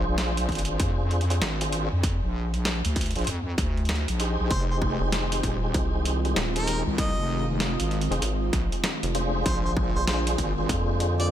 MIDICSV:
0, 0, Header, 1, 7, 480
1, 0, Start_track
1, 0, Tempo, 618557
1, 1579, Time_signature, 4, 2, 24, 8
1, 8777, End_track
2, 0, Start_track
2, 0, Title_t, "Harmonica"
2, 0, Program_c, 0, 22
2, 3498, Note_on_c, 0, 72, 91
2, 3596, Note_off_c, 0, 72, 0
2, 3652, Note_on_c, 0, 72, 73
2, 3708, Note_off_c, 0, 72, 0
2, 5089, Note_on_c, 0, 70, 92
2, 5287, Note_off_c, 0, 70, 0
2, 5419, Note_on_c, 0, 75, 92
2, 5810, Note_off_c, 0, 75, 0
2, 7338, Note_on_c, 0, 72, 83
2, 7435, Note_off_c, 0, 72, 0
2, 7489, Note_on_c, 0, 72, 74
2, 7547, Note_off_c, 0, 72, 0
2, 7728, Note_on_c, 0, 72, 87
2, 7786, Note_off_c, 0, 72, 0
2, 7815, Note_on_c, 0, 72, 78
2, 7914, Note_off_c, 0, 72, 0
2, 8690, Note_on_c, 0, 74, 93
2, 8747, Note_off_c, 0, 74, 0
2, 8777, End_track
3, 0, Start_track
3, 0, Title_t, "Tonewheel organ"
3, 0, Program_c, 1, 16
3, 0, Note_on_c, 1, 62, 94
3, 0, Note_on_c, 1, 65, 87
3, 0, Note_on_c, 1, 68, 86
3, 0, Note_on_c, 1, 72, 103
3, 494, Note_off_c, 1, 62, 0
3, 494, Note_off_c, 1, 65, 0
3, 494, Note_off_c, 1, 68, 0
3, 494, Note_off_c, 1, 72, 0
3, 530, Note_on_c, 1, 62, 75
3, 530, Note_on_c, 1, 68, 71
3, 531, Note_on_c, 1, 65, 73
3, 531, Note_on_c, 1, 72, 88
3, 974, Note_off_c, 1, 62, 0
3, 974, Note_off_c, 1, 68, 0
3, 974, Note_off_c, 1, 72, 0
3, 975, Note_off_c, 1, 65, 0
3, 1010, Note_on_c, 1, 65, 75
3, 1010, Note_on_c, 1, 72, 88
3, 1011, Note_on_c, 1, 62, 84
3, 1011, Note_on_c, 1, 68, 74
3, 1120, Note_off_c, 1, 65, 0
3, 1120, Note_off_c, 1, 72, 0
3, 1121, Note_off_c, 1, 62, 0
3, 1121, Note_off_c, 1, 68, 0
3, 1250, Note_on_c, 1, 62, 76
3, 1250, Note_on_c, 1, 65, 69
3, 1250, Note_on_c, 1, 68, 73
3, 1250, Note_on_c, 1, 72, 92
3, 1463, Note_off_c, 1, 62, 0
3, 1463, Note_off_c, 1, 72, 0
3, 1464, Note_off_c, 1, 65, 0
3, 1464, Note_off_c, 1, 68, 0
3, 2451, Note_on_c, 1, 62, 90
3, 2451, Note_on_c, 1, 65, 87
3, 2451, Note_on_c, 1, 68, 83
3, 2451, Note_on_c, 1, 72, 102
3, 2560, Note_off_c, 1, 62, 0
3, 2560, Note_off_c, 1, 68, 0
3, 2561, Note_off_c, 1, 65, 0
3, 2561, Note_off_c, 1, 72, 0
3, 3258, Note_on_c, 1, 72, 102
3, 3259, Note_on_c, 1, 63, 98
3, 3259, Note_on_c, 1, 67, 90
3, 3259, Note_on_c, 1, 68, 89
3, 4334, Note_off_c, 1, 63, 0
3, 4334, Note_off_c, 1, 67, 0
3, 4334, Note_off_c, 1, 68, 0
3, 4334, Note_off_c, 1, 72, 0
3, 4370, Note_on_c, 1, 63, 80
3, 4370, Note_on_c, 1, 68, 69
3, 4371, Note_on_c, 1, 67, 74
3, 4371, Note_on_c, 1, 72, 88
3, 4814, Note_off_c, 1, 63, 0
3, 4814, Note_off_c, 1, 67, 0
3, 4814, Note_off_c, 1, 68, 0
3, 4814, Note_off_c, 1, 72, 0
3, 4850, Note_on_c, 1, 63, 76
3, 4850, Note_on_c, 1, 68, 75
3, 4850, Note_on_c, 1, 72, 92
3, 4851, Note_on_c, 1, 67, 73
3, 4960, Note_off_c, 1, 63, 0
3, 4960, Note_off_c, 1, 68, 0
3, 4960, Note_off_c, 1, 72, 0
3, 4961, Note_off_c, 1, 67, 0
3, 5092, Note_on_c, 1, 67, 70
3, 5092, Note_on_c, 1, 68, 74
3, 5092, Note_on_c, 1, 72, 83
3, 5093, Note_on_c, 1, 63, 76
3, 5305, Note_off_c, 1, 63, 0
3, 5305, Note_off_c, 1, 67, 0
3, 5305, Note_off_c, 1, 68, 0
3, 5305, Note_off_c, 1, 72, 0
3, 6289, Note_on_c, 1, 63, 90
3, 6289, Note_on_c, 1, 68, 81
3, 6290, Note_on_c, 1, 67, 82
3, 6290, Note_on_c, 1, 72, 101
3, 6400, Note_off_c, 1, 63, 0
3, 6400, Note_off_c, 1, 67, 0
3, 6400, Note_off_c, 1, 68, 0
3, 6400, Note_off_c, 1, 72, 0
3, 7098, Note_on_c, 1, 62, 98
3, 7098, Note_on_c, 1, 65, 91
3, 7098, Note_on_c, 1, 68, 93
3, 7100, Note_on_c, 1, 72, 109
3, 8173, Note_off_c, 1, 65, 0
3, 8174, Note_off_c, 1, 62, 0
3, 8174, Note_off_c, 1, 68, 0
3, 8174, Note_off_c, 1, 72, 0
3, 8211, Note_on_c, 1, 62, 84
3, 8211, Note_on_c, 1, 68, 77
3, 8212, Note_on_c, 1, 65, 75
3, 8212, Note_on_c, 1, 72, 89
3, 8654, Note_off_c, 1, 62, 0
3, 8654, Note_off_c, 1, 68, 0
3, 8655, Note_off_c, 1, 65, 0
3, 8655, Note_off_c, 1, 72, 0
3, 8690, Note_on_c, 1, 62, 82
3, 8690, Note_on_c, 1, 65, 78
3, 8690, Note_on_c, 1, 68, 77
3, 8691, Note_on_c, 1, 72, 85
3, 8777, Note_off_c, 1, 62, 0
3, 8777, Note_off_c, 1, 65, 0
3, 8777, Note_off_c, 1, 68, 0
3, 8777, Note_off_c, 1, 72, 0
3, 8777, End_track
4, 0, Start_track
4, 0, Title_t, "Analog synth pad"
4, 0, Program_c, 2, 89
4, 3502, Note_on_c, 2, 51, 74
4, 3503, Note_on_c, 2, 60, 67
4, 3503, Note_on_c, 2, 65, 86
4, 3504, Note_on_c, 2, 56, 70
4, 5402, Note_off_c, 2, 65, 0
4, 5416, Note_on_c, 2, 65, 86
4, 7310, Note_off_c, 2, 51, 0
4, 7310, Note_off_c, 2, 56, 0
4, 7310, Note_off_c, 2, 60, 0
4, 7318, Note_off_c, 2, 65, 0
4, 7342, Note_on_c, 2, 50, 75
4, 7342, Note_on_c, 2, 56, 72
4, 7342, Note_on_c, 2, 65, 85
4, 7344, Note_on_c, 2, 58, 68
4, 8777, Note_off_c, 2, 50, 0
4, 8777, Note_off_c, 2, 56, 0
4, 8777, Note_off_c, 2, 58, 0
4, 8777, Note_off_c, 2, 65, 0
4, 8777, End_track
5, 0, Start_track
5, 0, Title_t, "Wobble bass"
5, 0, Program_c, 3, 39
5, 47, Note_on_c, 3, 34, 93
5, 364, Note_off_c, 3, 34, 0
5, 379, Note_on_c, 3, 32, 100
5, 605, Note_off_c, 3, 32, 0
5, 619, Note_on_c, 3, 41, 99
5, 1085, Note_off_c, 3, 41, 0
5, 1098, Note_on_c, 3, 32, 88
5, 1466, Note_off_c, 3, 32, 0
5, 1492, Note_on_c, 3, 41, 93
5, 1707, Note_off_c, 3, 41, 0
5, 1731, Note_on_c, 3, 34, 96
5, 2187, Note_off_c, 3, 34, 0
5, 2211, Note_on_c, 3, 38, 93
5, 2427, Note_off_c, 3, 38, 0
5, 2451, Note_on_c, 3, 34, 98
5, 2525, Note_off_c, 3, 34, 0
5, 2540, Note_on_c, 3, 41, 101
5, 2765, Note_off_c, 3, 41, 0
5, 2777, Note_on_c, 3, 38, 93
5, 3145, Note_off_c, 3, 38, 0
5, 3170, Note_on_c, 3, 34, 96
5, 3386, Note_off_c, 3, 34, 0
5, 3411, Note_on_c, 3, 34, 90
5, 3486, Note_off_c, 3, 34, 0
5, 3496, Note_on_c, 3, 29, 103
5, 3865, Note_off_c, 3, 29, 0
5, 4218, Note_on_c, 3, 27, 99
5, 4445, Note_off_c, 3, 27, 0
5, 5330, Note_on_c, 3, 36, 95
5, 5546, Note_off_c, 3, 36, 0
5, 5569, Note_on_c, 3, 29, 95
5, 6026, Note_off_c, 3, 29, 0
5, 6050, Note_on_c, 3, 32, 96
5, 6266, Note_off_c, 3, 32, 0
5, 6619, Note_on_c, 3, 34, 94
5, 6746, Note_off_c, 3, 34, 0
5, 7338, Note_on_c, 3, 34, 99
5, 7706, Note_off_c, 3, 34, 0
5, 8058, Note_on_c, 3, 32, 100
5, 8284, Note_off_c, 3, 32, 0
5, 8777, End_track
6, 0, Start_track
6, 0, Title_t, "Analog synth bass"
6, 0, Program_c, 4, 38
6, 3887, Note_on_c, 4, 29, 91
6, 4203, Note_off_c, 4, 29, 0
6, 4458, Note_on_c, 4, 36, 92
6, 4924, Note_off_c, 4, 36, 0
6, 4937, Note_on_c, 4, 27, 88
6, 5305, Note_off_c, 4, 27, 0
6, 6288, Note_on_c, 4, 29, 100
6, 6364, Note_off_c, 4, 29, 0
6, 6378, Note_on_c, 4, 32, 96
6, 6605, Note_off_c, 4, 32, 0
6, 7010, Note_on_c, 4, 29, 97
6, 7325, Note_off_c, 4, 29, 0
6, 7728, Note_on_c, 4, 34, 89
6, 8044, Note_off_c, 4, 34, 0
6, 8297, Note_on_c, 4, 41, 88
6, 8764, Note_off_c, 4, 41, 0
6, 8777, End_track
7, 0, Start_track
7, 0, Title_t, "Drums"
7, 139, Note_on_c, 9, 38, 121
7, 139, Note_on_c, 9, 42, 81
7, 216, Note_off_c, 9, 38, 0
7, 216, Note_off_c, 9, 42, 0
7, 290, Note_on_c, 9, 42, 65
7, 368, Note_off_c, 9, 42, 0
7, 378, Note_on_c, 9, 42, 28
7, 379, Note_on_c, 9, 36, 63
7, 404, Note_off_c, 9, 42, 0
7, 404, Note_on_c, 9, 42, 36
7, 429, Note_off_c, 9, 42, 0
7, 429, Note_on_c, 9, 42, 41
7, 454, Note_off_c, 9, 42, 0
7, 454, Note_on_c, 9, 42, 43
7, 456, Note_off_c, 9, 36, 0
7, 457, Note_off_c, 9, 42, 0
7, 457, Note_on_c, 9, 42, 50
7, 504, Note_off_c, 9, 42, 0
7, 504, Note_on_c, 9, 42, 57
7, 582, Note_off_c, 9, 42, 0
7, 617, Note_on_c, 9, 42, 80
7, 619, Note_on_c, 9, 36, 113
7, 695, Note_off_c, 9, 42, 0
7, 697, Note_off_c, 9, 36, 0
7, 860, Note_on_c, 9, 42, 27
7, 937, Note_off_c, 9, 42, 0
7, 938, Note_on_c, 9, 42, 38
7, 1011, Note_off_c, 9, 42, 0
7, 1011, Note_on_c, 9, 42, 36
7, 1019, Note_off_c, 9, 42, 0
7, 1019, Note_on_c, 9, 42, 51
7, 1097, Note_off_c, 9, 42, 0
7, 1099, Note_on_c, 9, 38, 121
7, 1099, Note_on_c, 9, 42, 76
7, 1176, Note_off_c, 9, 38, 0
7, 1176, Note_off_c, 9, 42, 0
7, 1250, Note_on_c, 9, 42, 64
7, 1327, Note_off_c, 9, 42, 0
7, 1338, Note_on_c, 9, 42, 66
7, 1416, Note_off_c, 9, 42, 0
7, 1579, Note_on_c, 9, 36, 112
7, 1580, Note_on_c, 9, 42, 73
7, 1656, Note_off_c, 9, 36, 0
7, 1657, Note_off_c, 9, 42, 0
7, 1969, Note_on_c, 9, 42, 35
7, 2047, Note_off_c, 9, 42, 0
7, 2058, Note_on_c, 9, 38, 119
7, 2058, Note_on_c, 9, 42, 73
7, 2136, Note_off_c, 9, 38, 0
7, 2136, Note_off_c, 9, 42, 0
7, 2209, Note_on_c, 9, 42, 59
7, 2287, Note_off_c, 9, 42, 0
7, 2297, Note_on_c, 9, 42, 61
7, 2298, Note_on_c, 9, 36, 65
7, 2336, Note_off_c, 9, 42, 0
7, 2336, Note_on_c, 9, 42, 49
7, 2373, Note_off_c, 9, 42, 0
7, 2373, Note_on_c, 9, 42, 38
7, 2375, Note_off_c, 9, 36, 0
7, 2410, Note_off_c, 9, 42, 0
7, 2410, Note_on_c, 9, 42, 34
7, 2448, Note_off_c, 9, 42, 0
7, 2448, Note_on_c, 9, 42, 28
7, 2472, Note_off_c, 9, 42, 0
7, 2472, Note_on_c, 9, 42, 23
7, 2494, Note_off_c, 9, 42, 0
7, 2494, Note_on_c, 9, 42, 18
7, 2517, Note_off_c, 9, 42, 0
7, 2517, Note_on_c, 9, 42, 15
7, 2538, Note_off_c, 9, 42, 0
7, 2538, Note_on_c, 9, 42, 72
7, 2615, Note_off_c, 9, 42, 0
7, 2778, Note_on_c, 9, 36, 101
7, 2779, Note_on_c, 9, 40, 47
7, 2779, Note_on_c, 9, 42, 59
7, 2855, Note_off_c, 9, 36, 0
7, 2856, Note_off_c, 9, 40, 0
7, 2856, Note_off_c, 9, 42, 0
7, 2929, Note_on_c, 9, 42, 15
7, 2989, Note_off_c, 9, 42, 0
7, 2989, Note_on_c, 9, 42, 22
7, 3018, Note_off_c, 9, 42, 0
7, 3018, Note_on_c, 9, 38, 125
7, 3018, Note_on_c, 9, 42, 78
7, 3068, Note_off_c, 9, 42, 0
7, 3068, Note_on_c, 9, 42, 28
7, 3096, Note_off_c, 9, 38, 0
7, 3145, Note_off_c, 9, 42, 0
7, 3168, Note_on_c, 9, 42, 60
7, 3245, Note_off_c, 9, 42, 0
7, 3256, Note_on_c, 9, 42, 65
7, 3334, Note_off_c, 9, 42, 0
7, 3497, Note_on_c, 9, 36, 103
7, 3497, Note_on_c, 9, 42, 71
7, 3574, Note_off_c, 9, 42, 0
7, 3575, Note_off_c, 9, 36, 0
7, 3738, Note_on_c, 9, 36, 105
7, 3815, Note_off_c, 9, 36, 0
7, 3977, Note_on_c, 9, 38, 112
7, 3977, Note_on_c, 9, 42, 75
7, 4054, Note_off_c, 9, 38, 0
7, 4054, Note_off_c, 9, 42, 0
7, 4128, Note_on_c, 9, 42, 61
7, 4206, Note_off_c, 9, 42, 0
7, 4217, Note_on_c, 9, 42, 58
7, 4218, Note_on_c, 9, 36, 61
7, 4295, Note_off_c, 9, 42, 0
7, 4296, Note_off_c, 9, 36, 0
7, 4457, Note_on_c, 9, 42, 72
7, 4458, Note_on_c, 9, 36, 102
7, 4535, Note_off_c, 9, 42, 0
7, 4536, Note_off_c, 9, 36, 0
7, 4698, Note_on_c, 9, 42, 58
7, 4776, Note_off_c, 9, 42, 0
7, 4850, Note_on_c, 9, 42, 33
7, 4927, Note_off_c, 9, 42, 0
7, 4938, Note_on_c, 9, 38, 116
7, 4938, Note_on_c, 9, 42, 77
7, 5016, Note_off_c, 9, 38, 0
7, 5016, Note_off_c, 9, 42, 0
7, 5090, Note_on_c, 9, 42, 60
7, 5167, Note_off_c, 9, 42, 0
7, 5180, Note_on_c, 9, 42, 62
7, 5257, Note_off_c, 9, 42, 0
7, 5419, Note_on_c, 9, 36, 106
7, 5419, Note_on_c, 9, 42, 73
7, 5496, Note_off_c, 9, 42, 0
7, 5497, Note_off_c, 9, 36, 0
7, 5899, Note_on_c, 9, 38, 109
7, 5899, Note_on_c, 9, 42, 72
7, 5976, Note_off_c, 9, 38, 0
7, 5976, Note_off_c, 9, 42, 0
7, 6050, Note_on_c, 9, 42, 60
7, 6128, Note_off_c, 9, 42, 0
7, 6139, Note_on_c, 9, 42, 29
7, 6217, Note_off_c, 9, 42, 0
7, 6219, Note_on_c, 9, 42, 37
7, 6297, Note_off_c, 9, 42, 0
7, 6299, Note_on_c, 9, 42, 46
7, 6377, Note_off_c, 9, 42, 0
7, 6379, Note_on_c, 9, 42, 70
7, 6457, Note_off_c, 9, 42, 0
7, 6619, Note_on_c, 9, 36, 98
7, 6620, Note_on_c, 9, 40, 52
7, 6620, Note_on_c, 9, 42, 63
7, 6697, Note_off_c, 9, 36, 0
7, 6698, Note_off_c, 9, 40, 0
7, 6698, Note_off_c, 9, 42, 0
7, 6769, Note_on_c, 9, 42, 33
7, 6847, Note_off_c, 9, 42, 0
7, 6857, Note_on_c, 9, 38, 116
7, 6857, Note_on_c, 9, 42, 77
7, 6935, Note_off_c, 9, 38, 0
7, 6935, Note_off_c, 9, 42, 0
7, 7009, Note_on_c, 9, 42, 58
7, 7086, Note_off_c, 9, 42, 0
7, 7099, Note_on_c, 9, 42, 62
7, 7176, Note_off_c, 9, 42, 0
7, 7339, Note_on_c, 9, 36, 99
7, 7339, Note_on_c, 9, 42, 73
7, 7417, Note_off_c, 9, 36, 0
7, 7417, Note_off_c, 9, 42, 0
7, 7578, Note_on_c, 9, 36, 99
7, 7656, Note_off_c, 9, 36, 0
7, 7818, Note_on_c, 9, 38, 108
7, 7818, Note_on_c, 9, 42, 75
7, 7896, Note_off_c, 9, 38, 0
7, 7896, Note_off_c, 9, 42, 0
7, 7969, Note_on_c, 9, 42, 65
7, 8047, Note_off_c, 9, 42, 0
7, 8058, Note_on_c, 9, 36, 55
7, 8058, Note_on_c, 9, 42, 67
7, 8135, Note_off_c, 9, 36, 0
7, 8136, Note_off_c, 9, 42, 0
7, 8297, Note_on_c, 9, 36, 97
7, 8299, Note_on_c, 9, 42, 76
7, 8375, Note_off_c, 9, 36, 0
7, 8376, Note_off_c, 9, 42, 0
7, 8538, Note_on_c, 9, 42, 60
7, 8615, Note_off_c, 9, 42, 0
7, 8689, Note_on_c, 9, 42, 35
7, 8766, Note_off_c, 9, 42, 0
7, 8777, End_track
0, 0, End_of_file